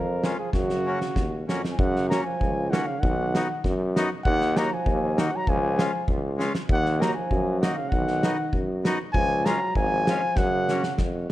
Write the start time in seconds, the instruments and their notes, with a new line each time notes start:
Already playing: tuba F2, euphonium F3, trumpet A#4
0.23 accordion G#3 C#4 F4, snare
0.37 euphonium F3, trumpet G#4
0.52 tuba F#2, euphonium C#3, trumpet F#4, kick, snare
0.70 snare
0.85 accordion A#3 C#4 F#4
1.01 snare
1.16 tuba D#2, kick, snare
1.48 tuba F2, accordion A#3 C#4 F#4, snare
1.65 snare
1.71 euphonium F3, trumpet G#5
1.79 tuba F#2, euphonium C#3, trumpet F#5, kick
1.96 snare
2.10 euphonium F#3, accordion A#3 C#4 F#4, trumpet A#5, snare, hi-hat pedal
2.24 euphonium F3, trumpet G#5
2.41 tuba C#2, kick
2.71 euphonium D#3, accordion A#3 C#4 F#4, trumpet F#5, snare, hi-hat pedal
2.86 euphonium C#3, trumpet F5
3.00 tuba B1, euphonium D#3, trumpet F#5, kick
3.34 accordion B3 D#4 F#4, snare, hi-hat pedal
3.64 tuba F#2, kick, snare
3.95 accordion B3 D#4 F#4, snare, hi-hat pedal
4.24 tuba D#2, euphonium D#3, trumpet F#5, kick
4.41 snare
4.56 euphonium F#3, accordion A#3 D#4 F#4, trumpet A#5, snare, hi-hat pedal
4.72 euphonium F3, trumpet G#5
4.86 tuba D#2, kick
5.17 euphonium D#3, accordion A#3 D#4 F#4, trumpet F#5, snare, hi-hat pedal
5.32 euphonium F#3
5.36 trumpet A#5
5.47 tuba C#2, euphonium F3, trumpet G#5, kick
5.77 accordion G#3 C#4 F4, snare, hi-hat pedal
6.08 tuba C#2, kick
6.37 accordion G#3 C#4 F4, snare, hi-hat pedal
6.55 snare
6.69 tuba D#2, euphonium D#3, trumpet F#5, kick
6.86 snare
6.99 euphonium F#3, accordion A#3 D#4 F#4, trumpet A#5, snare, hi-hat pedal
7.14 euphonium F3, trumpet G#5
7.31 tuba F#2, kick
7.60 euphonium D#3, accordion A#3 D#4 F#4, trumpet F#5, snare, hi-hat pedal
7.75 euphonium C#3, trumpet F5
7.89 tuba B1, euphonium D#3, trumpet F#5, kick
8.08 snare
8.23 accordion B3 D#4 F#4, snare, hi-hat pedal
8.53 tuba F#2, kick
8.84 accordion B3 D#4 F#4, snare, hi-hat pedal
9.13 tuba C#2, euphonium F3, trumpet G#5, kick
9.45 euphonium F#3, accordion G#3 C#4 F4, trumpet A#5, snare, hi-hat pedal
9.75 tuba G#1, euphonium F3, trumpet G#5, kick
10.07 accordion G#3 C#4 F4, snare, hi-hat pedal
10.36 tuba F#2, euphonium C#3, trumpet F#5, kick, snare
10.68 accordion A#3 C#4 F#4, snare, hi-hat pedal
10.84 snare
10.98 tuba F2, kick, snare